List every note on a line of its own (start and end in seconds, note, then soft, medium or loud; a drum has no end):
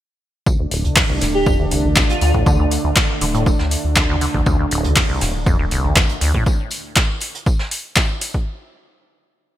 0.46 0.57 D2 medium
0.46 0.55 D2 medium
0.46 6.42 D3 medium
0.46 6.42 A3 medium
0.46 6.42 D4 medium
0.46 kick loud
0.46 tambourine medium
0.59 0.66 D2 medium
0.71 0.86 D1 loud
0.71 open hi-hat loud
0.71 tambourine medium
0.84 0.93 D2 medium
0.84 0.98 D2 medium
0.84 closed hi-hat soft
0.96 1.04 F2 medium
0.96 kick loud
0.96 snare loud
0.96 clap loud
0.96 open hi-hat medium
1.09 1.23 C2 medium
1.21 1.78 D1 loud
1.21 1.32 D1 medium
1.21 snare soft
1.21 open hi-hat medium
1.21 tambourine medium
1.34 1.52 G4 medium
1.46 1.57 F2 medium
1.46 kick loud
1.46 tambourine medium
1.59 1.66 D2 medium
1.71 1.86 C2 medium
1.71 open hi-hat medium
1.71 tambourine medium
1.84 2.15 A1 medium
1.84 1.98 D2 medium
1.96 2.04 F2 medium
1.96 kick loud
1.96 snare loud
1.96 clap loud
1.96 tambourine medium
2.09 2.17 F4 medium
2.09 closed hi-hat soft
2.21 2.78 D2 medium
2.21 2.32 D2 medium
2.21 2.30 F4 medium
2.21 open hi-hat loud
2.21 tambourine medium
2.34 2.44 A2 medium
2.34 kick medium
2.46 2.57 D3 loud
2.46 kick loud
2.46 tambourine medium
2.59 2.66 D2 medium
2.71 open hi-hat loud
2.71 tambourine medium
2.84 2.91 D2 medium
2.84 2.93 D2 medium
2.96 kick loud
2.96 snare loud
2.96 clap loud
2.96 tambourine medium
3.21 3.53 D1 loud
3.21 3.26 D3 medium
3.21 open hi-hat loud
3.21 tambourine medium
3.34 3.44 A2 medium
3.34 closed hi-hat soft
3.46 kick loud
3.46 tambourine medium
3.59 3.76 D2 medium
3.59 snare soft
3.71 open hi-hat loud
3.71 tambourine medium
3.84 4.28 D2 medium
3.96 4.04 D3 medium
3.96 kick loud
3.96 snare loud
3.96 clap loud
3.96 tambourine medium
4.09 4.16 D2 loud
4.21 4.26 D3 medium
4.21 open hi-hat loud
4.21 tambourine medium
4.34 4.43 A1 medium
4.34 4.41 D2 medium
4.34 kick medium
4.46 4.57 D2 medium
4.46 4.55 D2 medium
4.46 kick loud
4.46 tambourine medium
4.59 4.66 D2 medium
4.71 4.86 D1 loud
4.71 open hi-hat loud
4.71 tambourine medium
4.84 4.93 D2 medium
4.84 4.98 D2 medium
4.84 closed hi-hat soft
4.96 5.04 F2 medium
4.96 kick loud
4.96 snare loud
4.96 clap loud
4.96 open hi-hat medium
5.09 5.23 C2 medium
5.21 5.32 D1 medium
5.21 5.78 D1 loud
5.21 snare medium
5.21 open hi-hat loud
5.21 tambourine medium
5.46 5.57 F2 medium
5.46 kick loud
5.46 tambourine medium
5.59 5.66 D2 medium
5.71 5.86 C2 medium
5.71 open hi-hat loud
5.71 tambourine medium
5.84 6.15 A1 medium
5.84 5.98 D2 medium
5.96 6.03 F2 medium
5.96 kick loud
5.96 snare loud
5.96 clap loud
5.96 tambourine medium
6.09 closed hi-hat soft
6.21 6.32 D2 medium
6.21 6.39 D2 medium
6.21 open hi-hat loud
6.21 tambourine medium
6.34 6.44 A2 medium
6.34 kick medium
6.46 kick loud
6.46 tambourine medium
6.71 open hi-hat loud
6.71 tambourine medium
6.96 kick loud
6.96 snare loud
6.96 clap loud
6.96 tambourine medium
7.20 open hi-hat loud
7.20 tambourine medium
7.35 closed hi-hat soft
7.46 kick loud
7.46 tambourine medium
7.59 snare soft
7.71 open hi-hat loud
7.71 tambourine medium
7.96 kick loud
7.96 snare loud
7.96 clap loud
7.96 tambourine loud
8.21 open hi-hat loud
8.21 tambourine medium
8.34 kick medium